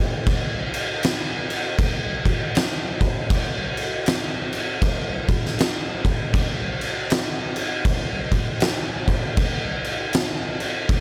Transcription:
0.27 kick loud
0.27 crash medium
0.74 crash medium
1.03 snare loud
1.03 crash medium
1.50 crash medium
1.79 kick loud
1.79 crash medium
2.26 kick medium
2.26 crash medium
2.55 snare loud
2.55 crash medium
3.01 kick medium
3.01 crash medium
3.30 kick loud
3.30 crash medium
3.77 crash medium
4.06 snare loud
4.06 crash medium
4.53 crash medium
4.82 kick loud
4.82 crash medium
5.28 kick medium
5.28 crash medium
5.46 snare soft
5.59 snare loud
5.59 crash medium
6.05 kick medium
6.05 crash medium
6.34 kick loud
6.34 crash medium
6.81 crash medium
7.10 snare loud
7.10 crash medium
7.56 crash medium
7.85 kick loud
7.85 crash medium
8.32 kick medium
8.32 crash medium
8.60 snare loud
8.60 crash medium
9.08 kick medium
9.08 crash medium
9.37 kick loud
9.37 crash medium
9.84 crash medium
10.13 snare loud
10.13 crash medium
10.60 crash medium
10.89 kick loud
10.89 crash medium

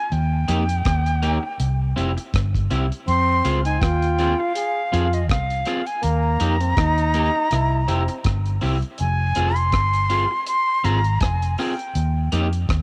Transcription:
0.00 0.14 G#5 loud
0.12 0.45 D#2 loud
0.12 2.34 G5 loud
0.12 closed hi-hat medium
0.48 0.82 F2 medium
0.48 0.63 A#3 medium
0.48 0.63 D#4 loud
0.48 0.63 G4 loud
0.48 closed hi-hat loud
0.69 closed hi-hat medium
0.85 1.37 D#2 loud
0.85 kick loud
0.85 cross-stick loud
0.85 closed hi-hat medium
1.06 closed hi-hat soft
1.22 1.37 A#3 medium
1.22 1.37 D#4 medium
1.22 1.37 G4 loud
1.22 closed hi-hat medium
1.43 muted clean electric guitar stroke medium
1.60 1.93 C2 loud
1.60 closed hi-hat medium
1.96 2.15 F1 medium
1.96 2.11 C4 medium
1.96 2.11 E4 medium
1.96 2.11 G4 medium
1.96 closed hi-hat medium
2.17 muted clean electric guitar stroke soft
2.17 closed hi-hat medium
2.34 2.67 G1 medium
2.34 kick loud
2.34 cross-stick loud
2.34 closed hi-hat loud
2.54 kick medium
2.54 closed hi-hat medium
2.71 2.89 C2 medium
2.71 2.85 C4 medium
2.71 2.85 E4 medium
2.71 2.85 G4 medium
2.71 closed hi-hat medium
2.92 closed hi-hat medium
3.07 3.40 F2 loud
3.07 3.62 C4 loud
3.07 3.61 C6 loud
3.07 closed hi-hat medium
3.45 3.78 C#2 medium
3.45 3.59 C4 medium
3.45 3.59 F4 loud
3.45 3.59 G#4 loud
3.45 closed hi-hat medium
3.65 3.83 D#4 medium
3.65 3.82 G#5 loud
3.65 closed hi-hat medium
3.81 4.33 D#2 loud
3.81 4.51 F4 loud
3.81 4.41 G5 loud
3.81 kick loud
3.81 cross-stick loud
3.81 closed hi-hat medium
4.02 closed hi-hat soft
4.18 4.33 C4 medium
4.18 4.33 F4 medium
4.18 4.33 G#4 medium
4.18 closed hi-hat medium
4.39 5.15 F5 loud
4.39 muted clean electric guitar stroke soft
4.55 4.85 G#4 loud
4.55 closed hi-hat loud
4.92 5.30 F2 loud
4.92 5.06 C4 medium
4.92 5.22 F4 medium
4.92 5.07 F4 medium
4.92 5.07 G#4 loud
4.92 closed hi-hat medium
5.13 5.30 D#5 medium
5.13 closed hi-hat medium
5.29 5.62 C2 medium
5.29 5.88 F5 medium
5.29 kick loud
5.29 cross-stick loud
5.29 closed hi-hat loud
5.50 closed hi-hat medium
5.65 5.81 C4 medium
5.65 5.81 F4 medium
5.65 5.81 G#4 medium
5.65 cross-stick medium
5.65 closed hi-hat medium
5.86 6.05 G#5 medium
5.86 closed hi-hat medium
6.02 6.37 D#2 loud
6.02 6.57 A#3 loud
6.02 8.62 A#5 loud
6.02 closed hi-hat medium
6.40 6.73 F2 medium
6.40 6.54 A#3 medium
6.40 6.55 D#4 medium
6.40 6.55 G4 loud
6.40 closed hi-hat medium
6.60 6.74 C4 medium
6.60 closed hi-hat medium
6.77 7.29 D#2 loud
6.77 7.47 D#4 loud
6.77 kick loud
6.77 cross-stick loud
6.77 closed hi-hat medium
6.98 closed hi-hat soft
7.14 7.29 A#3 medium
7.14 7.29 D#4 medium
7.14 7.29 G4 loud
7.14 closed hi-hat medium
7.36 muted clean electric guitar stroke soft
7.51 7.85 C2 loud
7.51 7.81 E4 medium
7.51 cross-stick medium
7.51 closed hi-hat medium
7.87 8.07 F1 loud
7.87 8.17 C4 medium
7.87 8.02 C4 medium
7.87 8.03 E4 medium
7.87 8.03 G4 medium
7.87 closed hi-hat medium
8.08 muted clean electric guitar stroke soft
8.08 closed hi-hat medium
8.24 8.58 G1 loud
8.24 kick loud
8.24 cross-stick loud
8.24 closed hi-hat loud
8.46 closed hi-hat soft
8.61 8.81 C2 loud
8.61 8.76 C4 medium
8.61 8.77 E4 medium
8.61 8.77 G4 medium
8.61 open hi-hat medium
8.83 closed hi-hat soft
8.98 9.33 F1 loud
8.98 9.58 G#5 loud
8.98 closed hi-hat medium
9.35 9.73 F1 loud
9.35 9.50 C4 medium
9.35 9.51 F4 loud
9.35 9.51 G#4 loud
9.35 closed hi-hat medium
9.56 10.47 C6 loud
9.56 closed hi-hat medium
9.72 10.25 G1 loud
9.72 kick loud
9.72 cross-stick loud
9.72 closed hi-hat medium
9.93 closed hi-hat soft
10.10 10.24 C4 medium
10.10 10.25 F4 medium
10.10 10.25 G#4 medium
10.10 closed hi-hat medium
10.31 muted clean electric guitar stroke soft
10.46 10.86 C6 loud
10.46 closed hi-hat loud
10.84 11.17 G#1 loud
10.84 10.98 C4 medium
10.84 10.98 F4 medium
10.84 10.99 G#4 loud
10.84 11.23 A#5 loud
10.84 closed hi-hat medium
11.04 closed hi-hat medium
11.21 11.54 F1 medium
11.21 11.61 G#5 medium
11.21 kick loud
11.21 cross-stick loud
11.21 closed hi-hat loud
11.42 closed hi-hat medium
11.58 11.72 C4 medium
11.58 11.73 F4 medium
11.58 11.73 G#4 loud
11.58 12.32 G5 medium
11.58 cross-stick medium
11.58 open hi-hat medium
11.79 closed hi-hat medium
11.95 12.28 D#2 loud
11.95 closed hi-hat medium
12.32 12.65 F2 medium
12.32 12.46 A#3 medium
12.32 12.47 D#4 loud
12.32 12.47 G4 loud
12.32 closed hi-hat loud
12.53 closed hi-hat medium
12.69 12.82 D#2 loud
12.69 kick loud
12.69 cross-stick loud
12.69 closed hi-hat medium

